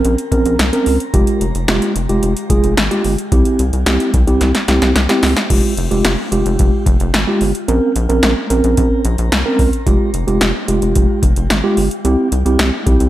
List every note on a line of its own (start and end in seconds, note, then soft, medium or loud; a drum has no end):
0.00 0.14 C4 medium
0.00 0.14 C#4 medium
0.00 0.14 A#4 medium
0.05 0.16 A#1 loud
0.05 closed hi-hat medium
0.18 closed hi-hat medium
0.32 0.44 A#1 loud
0.32 0.55 C4 medium
0.32 0.55 C#4 medium
0.32 0.55 A#4 medium
0.32 kick medium
0.32 closed hi-hat medium
0.46 0.57 A#1 loud
0.46 closed hi-hat medium
0.59 0.71 C2 medium
0.59 snare loud
0.59 closed hi-hat medium
0.73 0.96 C4 medium
0.73 0.96 C#4 medium
0.73 0.96 A#4 loud
0.73 closed hi-hat medium
0.86 0.98 C#2 medium
0.86 open hi-hat medium
1.00 closed hi-hat medium
1.14 1.26 F1 loud
1.14 1.44 G#3 medium
1.14 1.44 F4 medium
1.14 1.44 G4 medium
1.14 kick loud
1.14 closed hi-hat medium
1.27 closed hi-hat medium
1.41 1.53 F1 loud
1.41 closed hi-hat medium
1.55 1.66 F1 loud
1.55 closed hi-hat medium
1.68 1.80 F1 loud
1.68 1.91 G#3 medium
1.68 1.91 F4 medium
1.68 1.91 G4 medium
1.68 snare loud
1.68 closed hi-hat medium
1.82 closed hi-hat soft
1.96 2.07 F1 loud
1.96 closed hi-hat medium
2.09 2.21 F1 loud
2.09 2.32 G#3 medium
2.09 2.32 F4 medium
2.09 2.32 G4 loud
2.09 closed hi-hat medium
2.23 2.35 F1 loud
2.23 closed hi-hat medium
2.37 closed hi-hat medium
2.50 2.62 F1 loud
2.50 2.73 G#3 medium
2.50 2.73 F4 medium
2.50 2.73 G#4 loud
2.50 kick medium
2.50 closed hi-hat medium
2.64 2.76 F1 medium
2.64 closed hi-hat medium
2.77 2.89 G#1 loud
2.77 snare loud
2.77 closed hi-hat medium
2.91 3.14 G#3 medium
2.91 3.14 F4 medium
2.91 3.14 G4 loud
2.91 closed hi-hat medium
3.04 3.17 G1 medium
3.04 open hi-hat medium
3.18 closed hi-hat medium
3.32 3.44 C2 loud
3.32 3.62 C4 medium
3.32 3.62 E4 medium
3.32 3.62 G4 medium
3.32 kick loud
3.32 closed hi-hat medium
3.45 closed hi-hat medium
3.59 3.71 C2 loud
3.59 closed hi-hat medium
3.73 3.85 C2 medium
3.73 closed hi-hat soft
3.86 3.98 C2 loud
3.86 4.09 C4 medium
3.86 4.09 E4 medium
3.86 4.09 G4 medium
3.86 snare loud
3.86 closed hi-hat medium
4.00 closed hi-hat soft
4.14 4.26 C2 loud
4.14 kick loud
4.14 closed hi-hat medium
4.27 4.39 C2 loud
4.27 4.50 C4 medium
4.27 4.50 E4 medium
4.27 4.50 G4 medium
4.27 closed hi-hat medium
4.41 4.53 C2 loud
4.41 snare medium
4.41 closed hi-hat medium
4.55 snare medium
4.55 closed hi-hat medium
4.68 4.80 C2 loud
4.68 4.91 C4 medium
4.68 4.91 E4 medium
4.68 4.91 G4 loud
4.68 snare medium
4.68 closed hi-hat medium
4.82 4.94 C2 medium
4.82 snare medium
4.82 closed hi-hat medium
4.96 5.07 C2 loud
4.96 snare medium
4.96 closed hi-hat medium
5.09 5.32 C4 medium
5.09 5.32 E4 medium
5.09 5.32 G4 loud
5.09 snare medium
5.09 closed hi-hat medium
5.23 5.35 C#2 medium
5.23 snare loud
5.23 open hi-hat medium
5.37 snare medium
5.37 closed hi-hat medium
5.50 5.62 F1 loud
5.50 5.73 G#3 medium
5.50 5.73 F4 medium
5.50 5.73 G4 medium
5.50 kick loud
5.50 closed hi-hat medium
5.50 crash medium
5.77 5.89 F1 loud
5.77 closed hi-hat medium
5.91 6.03 F1 loud
5.91 6.14 G#3 medium
5.91 6.14 F4 medium
5.91 6.14 G4 medium
5.91 closed hi-hat soft
6.05 6.16 F1 loud
6.05 snare loud
6.05 closed hi-hat medium
6.32 6.44 F1 medium
6.32 6.85 G#3 medium
6.32 6.85 F4 medium
6.32 6.85 G4 medium
6.32 closed hi-hat medium
6.46 6.57 F1 loud
6.46 closed hi-hat medium
6.59 6.71 F1 loud
6.59 kick loud
6.59 closed hi-hat medium
6.86 6.98 F1 loud
6.86 kick medium
6.86 closed hi-hat medium
7.00 7.12 F1 loud
7.00 closed hi-hat medium
7.14 7.26 G#1 loud
7.14 snare loud
7.14 closed hi-hat medium
7.27 7.50 G#3 medium
7.27 7.50 F4 medium
7.27 7.50 G4 medium
7.41 7.53 G1 medium
7.41 open hi-hat medium
7.55 closed hi-hat medium
7.68 7.80 A#1 loud
7.68 7.91 C4 medium
7.68 7.91 C#4 medium
7.68 7.91 A#4 medium
7.68 closed hi-hat medium
7.96 8.07 A#1 loud
7.96 closed hi-hat medium
8.09 8.21 A#1 loud
8.09 8.32 C4 medium
8.09 8.32 C#4 medium
8.09 8.32 A#4 medium
8.09 closed hi-hat soft
8.23 8.35 A#1 loud
8.23 snare loud
8.23 closed hi-hat medium
8.50 8.62 A#1 loud
8.50 9.03 C4 medium
8.50 9.03 C#4 medium
8.50 9.03 A#4 medium
8.50 closed hi-hat medium
8.64 8.76 A#1 loud
8.64 closed hi-hat medium
8.77 8.89 A#1 loud
8.77 kick loud
8.77 closed hi-hat medium
9.05 9.16 A#1 loud
9.05 closed hi-hat medium
9.18 9.30 A#1 loud
9.18 closed hi-hat medium
9.32 9.44 C2 loud
9.32 snare loud
9.32 closed hi-hat medium
9.46 9.68 C4 medium
9.46 9.68 C#4 medium
9.46 9.68 A#4 loud
9.59 9.71 C#2 medium
9.59 kick medium
9.59 open hi-hat medium
9.73 closed hi-hat medium
9.87 9.98 F1 loud
9.87 10.09 G#3 medium
9.87 10.09 F4 medium
9.87 10.09 G4 medium
9.87 kick loud
9.87 closed hi-hat medium
10.14 10.26 F1 loud
10.14 closed hi-hat medium
10.27 10.39 F1 loud
10.27 10.50 G#3 medium
10.27 10.50 F4 medium
10.27 10.50 G4 medium
10.27 closed hi-hat soft
10.41 10.53 F1 loud
10.41 snare loud
10.41 closed hi-hat medium
10.68 10.80 F1 loud
10.68 11.21 G#3 medium
10.68 11.21 F4 medium
10.68 11.21 G4 medium
10.68 closed hi-hat medium
10.82 10.94 F1 medium
10.82 closed hi-hat medium
10.95 11.08 F1 loud
10.95 kick loud
10.95 closed hi-hat medium
11.23 11.34 F1 loud
11.23 kick loud
11.23 closed hi-hat medium
11.36 11.48 F1 loud
11.36 closed hi-hat medium
11.50 11.62 G#1 loud
11.50 snare loud
11.50 closed hi-hat medium
11.64 11.86 G#3 medium
11.64 11.86 F4 medium
11.64 11.86 G4 loud
11.77 11.89 G1 medium
11.77 open hi-hat medium
11.91 closed hi-hat medium
12.05 12.16 C2 loud
12.05 12.27 C4 medium
12.05 12.27 E4 medium
12.05 12.27 G4 loud
12.05 closed hi-hat medium
12.32 12.44 C2 loud
12.32 closed hi-hat medium
12.46 12.57 C2 loud
12.46 12.68 C4 medium
12.46 12.68 E4 medium
12.46 12.68 G4 medium
12.46 closed hi-hat soft
12.59 12.71 C2 loud
12.59 snare loud
12.59 closed hi-hat medium
12.87 12.98 C2 loud
12.87 13.09 C4 medium
12.87 13.09 E4 medium
12.87 13.09 G4 medium
12.87 kick loud
12.87 closed hi-hat medium
13.00 13.09 C2 loud
13.00 closed hi-hat medium